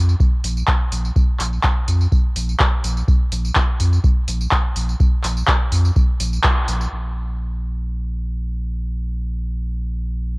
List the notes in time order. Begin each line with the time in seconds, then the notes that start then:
Already playing: F2
0.09 tambourine
0.20 kick, tambourine
0.44 A#1, open hi-hat, tambourine
0.57 tambourine
0.68 kick, clap, tambourine
0.92 A#1, open hi-hat, tambourine
1.05 tambourine
1.16 kick, tambourine
1.40 A#1, clap, open hi-hat, tambourine
1.53 tambourine
1.63 kick, clap, tambourine
1.88 F2, open hi-hat, tambourine
2.01 tambourine
2.12 kick, tambourine
2.36 A#1, open hi-hat, tambourine
2.49 tambourine
2.60 kick, clap, tambourine
2.84 A#1, open hi-hat, tambourine
2.97 tambourine
3.08 kick, tambourine
3.32 A#1, open hi-hat, tambourine
3.45 tambourine
3.56 kick, clap, tambourine
3.80 F2, open hi-hat, tambourine
3.93 tambourine
4.04 kick, tambourine
4.28 A#1, open hi-hat, tambourine
4.41 tambourine
4.51 kick, clap, tambourine
4.76 A#1, open hi-hat, tambourine
4.89 tambourine
5.00 kick, tambourine
5.24 A#1, clap, open hi-hat, tambourine
5.37 tambourine
5.47 kick, clap, tambourine
5.72 F2, open hi-hat, tambourine
5.85 tambourine
5.96 kick, tambourine
6.20 A#1, open hi-hat, tambourine
6.33 tambourine
6.43 kick, clap, tambourine
6.68 A#1, open hi-hat, tambourine
6.81 tambourine
6.92 A#1